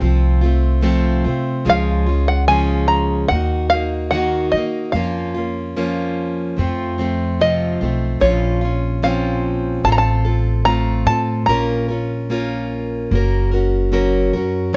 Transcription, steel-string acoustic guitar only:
0.01 F3 A3 C4 F4
0.41 A3 C4 F4
0.81 C3 F3 A3 C4 F4
1.24 A3 C4 F4
1.65 C#3 F3 G#3 C#4 F4
2.06 G#3 C#4 F4
2.48 C#3 F3 G#3 C#4 F4
3.29 D#3 A#3 D#4 F#4
3.71 A#3 D#4 F#4
4.12 D#3 A#3 D#4 F#4
4.54 A#3 D#4 F#4
4.94 F3 A#3 C#4 F4
5.34 A#3 C#4 F4
5.76 F3 A#3 C#4 F4
6.57 F3 A3 C4 F4
6.98 F3 A3 C4 F4
7.40 F2 C3 F3 A3 C4 F4
7.81 F3 A3 C4 F4
8.20 A#2 F3 C#4 F4
8.61 C#4 F4
9.03 A#2 F3 C4 C#4 F4
9.84 A3 C4 F4 A4
10.25 C4 F4 A4
10.65 A3 C4 F4
11.06 C4 F4 A4
11.48 A#2 A#3 C#4 F4 A#4
11.88 C#4 F4 A#4
12.30 A#2 A#3 C#4 F4 A#4
13.12 A#3 C#4 F#4 A#4
13.51 C#4 F#4 A#4
13.92 F#3 A#3 C#4 F#4 A#4
14.33 C#4 F#4 A#4
14.73 F#3

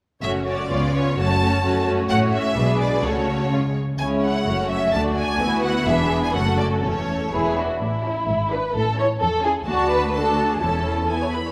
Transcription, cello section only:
0.23 F#2
0.70 C#3
1.18 F#2
1.64 F#2
2.09 A2
2.56 B2
3.04 C#3
3.99 C#3
4.47 F#2
4.94 D2
5.40 D2
5.86 E2
6.34 F#2
6.83 E2
7.32 E2
7.82 A2
8.28 G#2
8.75 A2
9.21 E2
9.67 D2
10.62 E2

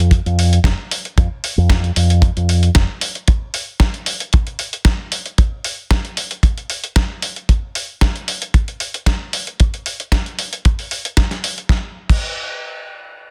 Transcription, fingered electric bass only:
Already playing: F2
0.26 F2
0.64 F1
1.17 F2
1.58 F2
1.96 F2
2.37 F2
2.76 F1

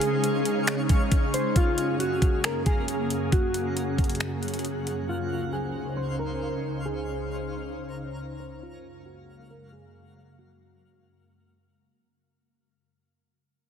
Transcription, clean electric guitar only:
Already playing: G#4
1.34 C5
1.57 F4
2.00 F#4
2.45 A#4
2.66 G#4
3.33 F#4
5.09 F4
5.53 G#4
5.97 C5
6.19 A#4
6.85 G#4
8.40 C5
8.63 F4
9.06 F#4
9.51 A#4
9.72 G#4
10.39 F#4

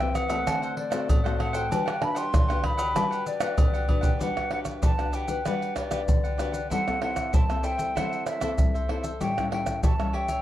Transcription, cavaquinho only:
0.00 B4 C5 E5
0.13 muted cavaquinho stroke
0.28 B4 C5 E5
0.46 D4 A4 C5 F#5
0.62 A4 C5 F#5
0.90 A4 C5 F#5
1.24 A4 C5 F#5
1.38 D4 A4 C5 F#5
1.53 A4 C5 F#5
1.69 D4 G4 B4 F#5
1.86 G4 B4 F#5
2.00 muted cavaquinho stroke
2.15 G4 B4 F#5
2.32 D4 G4 B4 F#5
2.48 G4 B4 F#5
2.77 G4 B4 F#5
2.95 D4 G4 B4 F#5
3.11 G4 B4 F#5
3.40 G4 B4 F#5
3.74 G4 B4 F#5
3.88 D4 G4 B4 F#5
4.01 G4 B4 F#5
4.19 D4 G4 B4 F#5
4.50 D4 G4 B4 F#5
4.82 D4 G4 B4 F#5
4.98 G4 B4 F#5
5.12 D4 G4 B4 F#5
5.27 G4 B4 F#5
5.45 D4 G4 B4 F#5
5.76 D4 G4 B4 F#5
5.90 D4 G4 B4 F#5
6.24 G4 B4 F#5
6.37 D4 G4 B4 F#5
6.52 G4 B4 F#5
6.70 E4 A4 C5 E5
7.01 E4 A4 C5 E5
7.33 E4 A4 C5 E5
7.49 A4 C5 E5
7.63 E4 A4 C5 E5
7.77 A4 C5 E5
7.95 E4 A4 C5 E5
8.25 E4 A4 C5 E5
8.40 E4 A4 C5 E5
8.74 A4 C5 E5
8.88 E4 A4 C5 E5
9.03 A4 C5 E5
9.20 G4 A4 C#5 E5
9.51 G4 A4 C#5 E5
9.84 G4 A4 C#5 E5
9.99 A4 C#5 E5
10.13 G4 A4 C#5 E5
10.28 A4 C#5 E5

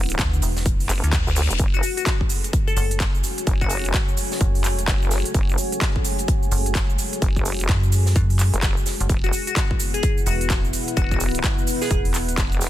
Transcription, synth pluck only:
1.74 F#4
1.83 F#4
1.97 F#4
2.67 A4
2.77 A4
3.61 F#4
3.70 F#4
9.24 F#4
9.33 F#4
9.47 F#4
9.56 F#4
9.94 G#4
10.03 G#4
10.26 F#4
10.97 F#4
11.11 F#4
11.82 G#4
11.91 G#4

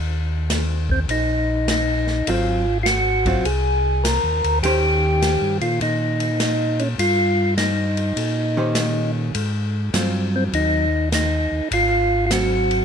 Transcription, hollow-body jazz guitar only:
2.29 F#3 C4 F4
3.26 F#3 C4 F4
4.65 D#3 C#4 G4 C5
8.57 D#3 C#4 G4 C5
9.94 F#3 C4 F4
12.31 F#3 C4

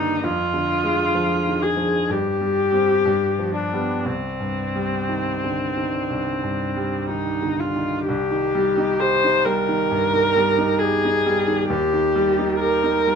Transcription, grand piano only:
Already playing: G2 D3 D#3 G3 A#3
0.23 F2
0.54 D3
0.84 G#3
1.15 F3
1.47 D#3
1.77 F3
2.09 G2
2.41 G3
2.72 G3 C4
3.05 G2
3.39 F3
3.73 G3 B3
4.06 C2
4.40 G2
4.75 G3
5.09 D#3
5.44 D3
5.77 D#3
6.10 C2
6.43 G2
6.77 G3
7.09 D#3
7.43 D3
7.76 D#3
8.08 C2
8.31 D#3
8.55 G3
8.77 D#4
9.00 G4
9.24 D#4
9.46 G3
9.69 D#3
9.91 G2
10.13 D#3
10.36 G3
10.58 D#4
10.82 G4
11.05 D#4
11.26 G3
11.48 D#3
11.70 D#2
11.93 D#3
12.16 G3
12.39 D#4
12.61 G4
12.84 D#4
13.07 G3

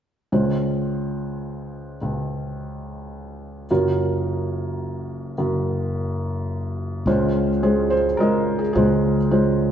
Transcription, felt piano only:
0.32 C#2 C#3 G#3 C#4 F4 C5
2.01 C#2 C#3
3.71 F#1 F#2 F#3 C#4 F4 A#4
5.38 F#1 F#2
7.07 C#2 C#3 G#3 C#4 F4 C5
7.63 G#3 C#4 F4 G#4 C5
7.90 C5
8.17 G#3 C#4 F4 A#4 D#5
8.59 G#4
8.73 C#2 C#3 G#3 C#4 F4 G#4 C5
9.31 G#3 C#4 F4 C5

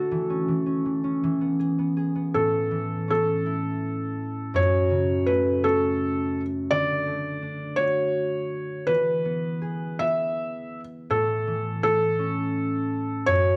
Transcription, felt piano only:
Already playing: A4
2.34 A4
3.10 A4
4.56 C#5
5.26 B4
5.64 A4
6.71 D5
7.76 C#5
8.87 B4
9.99 E5
11.11 A4
11.83 A4
13.26 C#5

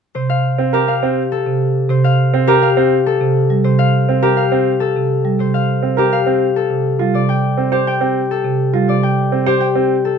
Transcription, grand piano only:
0.58 C4
0.73 A#4
1.03 C4
2.34 C4
2.48 A#4
2.77 C4
4.09 C4
4.23 A#4
4.52 C4
5.82 C4
5.97 A#4
6.26 C4
6.99 F4
7.57 C4
7.72 C5
8.01 C4
8.73 F4
9.32 C4
9.46 C5
9.75 C4

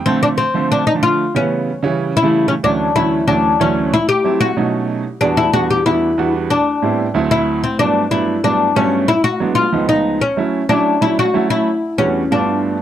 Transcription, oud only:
0.06 C4
0.23 D4
0.38 C4
0.72 D4
0.87 D#4
1.03 F4
1.36 C#4
2.17 E4
2.48 C#4
2.64 D4
2.96 E4
3.28 D4
3.61 C#4
3.94 E4
4.09 G4
4.41 F#4
5.21 D4
5.37 E4
5.53 F#4
5.70 G4
5.86 E4
6.50 D4
7.31 E4
7.63 C4
7.79 D4
8.11 E4
8.44 D4
8.76 C#4
9.08 E4
9.24 F#4
9.55 F4
9.89 D#4
10.21 C#4
10.69 D4
11.02 E4
11.19 F#4
11.50 E4
11.98 C#4
12.32 D4

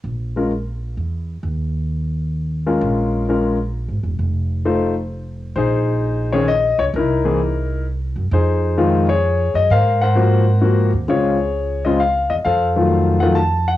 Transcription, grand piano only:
0.36 G#3 C#4 F4 A#4
2.67 G#3 C#4 F4 A#4
3.29 G#3 C#4 F4 A#4
4.65 A3 D#4 F4 C5
5.56 D#4 G#4 C5
6.32 D#3 C4 C#4 G#4 C#5
6.48 D#5
6.79 C#5
6.96 D#4 E4 A#4
7.24 E3 A#3 C4 G#4
8.33 D#4 G#4 C5
8.78 D#3 G#3 C4 F4
9.09 G#4 C#5
9.55 D#5
9.71 A#4 C5 F5
10.01 A#4 C5 F#5
10.15 F3 A#3 C4 F#4
10.61 F3 A#3 C4 F#4
11.08 C#3 G#3 C4 F4 G#4 C#5
11.85 C#3 G#3 C4 F4 D#5
12.00 F5
12.30 D#5
12.45 A4 C5 F5
12.76 D#3 F#3 A3 F4
13.20 D#3 F#3 A3 F4 F#5
13.35 A5
13.68 F#5

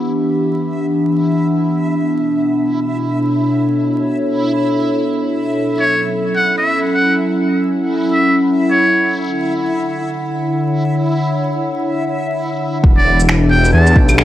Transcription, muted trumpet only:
5.80 C#5
6.35 F#5
6.58 E5
6.94 F#5
8.13 E5
8.71 C#5
12.97 D5
13.50 G5
13.73 A5

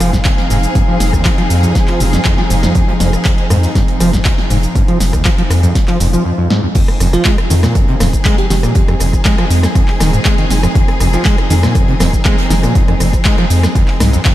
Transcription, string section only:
Already playing: F3 C4 D#4 G#4
6.76 F3 C4 D#4 G#4

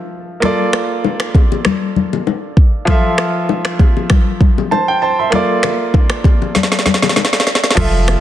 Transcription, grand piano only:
Already playing: F3 F4 A4 E5
0.40 A#3 F4 A4
0.45 D5
2.85 F3 F4 A4
2.90 E5
4.71 C5 A5
4.88 G5
5.02 C5 A5
5.19 E5 C6
5.30 A#3 F4 A4
5.35 D5
7.75 F3 F4 A4
7.80 E5

